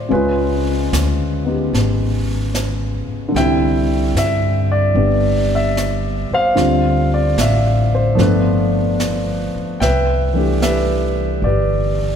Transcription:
Already playing: grand piano D3 G3 C4 F4 C5 D5
0.09 upright bass C#2, grand piano C#3 G#3 C#4 B4, brush sweep
0.13 grand piano F4
0.92 upright bass D2, snare, hi-hat pedal
1.45 grand piano B3 D#4 G4
1.73 upright bass G#1, brush sweep, snare
2.55 snare, hi-hat pedal
3.08 muted upright bass stroke
3.29 grand piano D3 G3
3.34 upright bass C2, grand piano C4 E5 G5, brush sweep, snare
3.40 grand piano E4
4.15 upright bass G2, grand piano E5, snare, hi-hat pedal
4.72 grand piano D5
4.94 upright bass G1, grand piano G3 B3 D4, brush sweep
5.55 grand piano E5
5.77 snare, hi-hat pedal
6.31 grand piano C5 F5, muted upright bass stroke
6.55 upright bass D2, grand piano D3 G3 C4 F4, brush sweep, snare
7.14 grand piano D5
7.37 upright bass A1, grand piano E5, snare, hi-hat pedal
7.95 grand piano C5
8.15 upright bass G1, grand piano F3 A3 B3, brush sweep, snare
8.20 grand piano D4 F4 B4
9.00 snare, hi-hat pedal
9.55 muted upright bass stroke
9.80 upright bass C2, grand piano B4 E5 G5, brush sweep, snare
10.33 grand piano E3 A3 D4
10.38 grand piano G4
10.62 grand piano G4 B4 E5, snare, hi-hat pedal
11.42 upright bass G1, grand piano G4 B4 D5, brush sweep

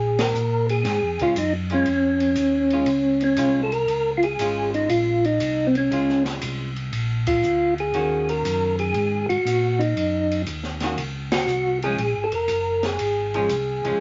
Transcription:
Already playing: tonewheel organ A#1 G#4
0.19 tonewheel organ A#4, snare, ride
0.34 tonewheel organ A#2, hi-hat pedal
0.69 tonewheel organ G#4, ride
0.84 tonewheel organ G#2, snare, ride
1.02 tonewheel organ F2
1.19 tonewheel organ C#2 F4, hollow-body jazz guitar G#3 C#4 F4, kick, ride
1.36 tonewheel organ F#2 D#4, hi-hat pedal, ride
1.70 hollow-body jazz guitar G#3 C#4 F4, ride
1.74 tonewheel organ C#4
1.85 tonewheel organ F2, ride
2.20 ride
2.35 tonewheel organ D#2, hi-hat pedal, ride
2.70 hollow-body jazz guitar G#3 C#4 F4, ride
2.86 tonewheel organ C#2, ride
3.21 tonewheel organ C#4, ride
3.37 tonewheel organ C2, hollow-body jazz guitar G#3 C#4 F4, hi-hat pedal, ride
3.63 tonewheel organ A4
3.72 tonewheel organ A#4, ride
3.88 tonewheel organ C#2, ride
4.17 tonewheel organ F4
4.23 tonewheel organ G#4, ride
4.39 tonewheel organ G#1, hollow-body jazz guitar G#3 C#4 F4, hi-hat pedal, ride
4.74 tonewheel organ D#4, ride
4.89 tonewheel organ A#1 F4, ride
5.24 tonewheel organ D#4, ride
5.40 tonewheel organ C2, hi-hat pedal, ride
5.67 tonewheel organ C4
5.75 tonewheel organ C#4, ride
5.91 tonewheel organ C#2, hollow-body jazz guitar G#3 C#4 F4, ride
6.09 snare
6.25 snare, ride
6.42 tonewheel organ C2, hi-hat pedal, ride
6.76 ride
6.93 tonewheel organ A#1, ride
7.27 tonewheel organ F4, kick, ride
7.43 tonewheel organ D2, hi-hat pedal
7.78 tonewheel organ G#4, ride
7.94 tonewheel organ D#2, hollow-body jazz guitar D#3 A#3 C#4 F#4, ride
8.29 tonewheel organ A#4, ride
8.45 tonewheel organ F#2, hi-hat pedal, ride
8.79 tonewheel organ G#4, ride
8.94 tonewheel organ G#2, ride
9.29 tonewheel organ G#2 F#4, ride
9.45 tonewheel organ A#2, hi-hat pedal, ride
9.79 tonewheel organ D#4, ride
9.96 tonewheel organ F#2, ride
10.32 ride
10.47 tonewheel organ D#2, hi-hat pedal, ride
10.64 snare
10.80 hollow-body jazz guitar D#3 A#3 C#4 F#4, snare, ride
10.97 tonewheel organ C#2, ride
11.32 tonewheel organ F#4, snare, ride
11.47 tonewheel organ C2, hi-hat pedal
11.82 hollow-body jazz guitar F3 G#3 C#4, tonewheel organ G#4, ride
11.98 tonewheel organ A#1, ride
12.16 tonewheel organ G#1
12.24 tonewheel organ A4
12.32 tonewheel organ F1 A#4, ride
12.48 tonewheel organ F#1, hi-hat pedal, ride
12.83 tonewheel organ G#4, snare, ride
12.99 tonewheel organ G#1, ride
13.34 hollow-body jazz guitar F3 G#3 C#4, ride
13.49 tonewheel organ C2, hi-hat pedal, ride
13.83 tonewheel organ C2, hollow-body jazz guitar F3 G#3 C#4, ride

